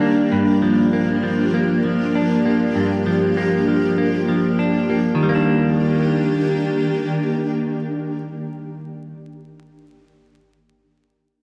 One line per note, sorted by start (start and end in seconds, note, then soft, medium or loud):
0.00 0.27 D#3 medium
0.00 0.31 D#3 medium
0.00 0.62 G3 soft
0.00 5.17 A#3 medium
0.00 0.93 A#3 medium
0.00 2.15 D4 medium
0.00 5.17 D4 medium
0.00 0.27 G4 medium
0.32 2.74 G2 medium
0.32 5.17 F3 medium
0.32 5.17 G4 medium
0.62 1.22 F3 medium
0.93 1.53 A#3 medium
1.23 1.83 F3 medium
1.54 2.45 A#3 medium
1.84 3.05 F3 soft
2.15 4.59 D4 medium
2.45 3.37 A#3 medium
2.76 5.21 G2 medium
3.06 3.67 F3 medium
3.37 3.98 A#3 medium
3.68 4.27 F3 soft
3.98 4.89 A#3 medium
4.29 5.22 F3 soft
4.59 5.34 D4 medium
4.90 5.29 A#3 soft
5.15 9.13 D#3 medium
5.21 8.42 D#3 medium
5.21 9.17 G3 medium
5.21 8.42 A#3 medium
5.21 8.42 D4 medium
5.21 8.42 G4 medium
5.29 9.20 A#3 medium
5.35 9.23 D4 medium